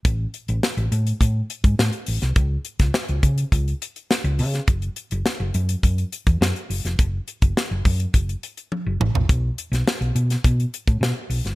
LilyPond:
<<
  \new Staff \with { instrumentName = "Fingered electric bass" } { \clef bass \time 4/4 \key fis \minor \tempo 4 = 104 a,,8 r16 a,,16 r16 a,,16 a,8 a,8 r16 gis,16 a,16 r16 a,,16 c,16 | cis,8 r16 cis,16 r16 cis,16 cis8 cis,8 r8. cis,16 cis8 | fis,,8 r16 fis,,16 r16 fis,,16 fis,8 fis,8 r16 e,16 fis,16 r16 fis,,16 f,,16 | fis,,8 r16 fis,,16 r16 fis,,16 fis,8 fis,,8 r8. fis,,16 a,,16 ais,,16 |
b,,8 r16 b,,16 r16 b,,16 b,8 b,8 r16 a,16 b,16 r16 b,,16 g,,16 | }
  \new DrumStaff \with { instrumentName = "Drums" } \drummode { \time 4/4 <hh bd>8 hh16 hh16 sn16 hh16 hh16 hh16 <hh bd>8 hh16 <hh bd>16 sn16 hh16 hho16 <hh sn>16 | <hh bd>8 hh16 <hh bd sn>16 sn16 hh16 <hh bd>16 hh16 <hh bd>16 hh16 hh16 hh16 sn16 hh16 hho16 <hh sn>16 | <hh bd>16 hh16 hh16 hh16 sn8 hh16 hh16 <hh bd>16 hh16 hh16 <hh bd>16 sn16 hh16 hho16 <hh sn>16 | <hh bd>8 hh16 <hh bd>16 sn8 <hho bd>16 hh16 <hh bd>16 hh16 hh16 hh16 tommh8 toml16 tomfh16 |
<hh bd>8 hh16 <hh sn>16 sn16 hh16 hh16 <hh sn>16 <hh bd>16 hh16 hh16 <hh bd>16 sn8 hho16 <hh sn>16 | }
>>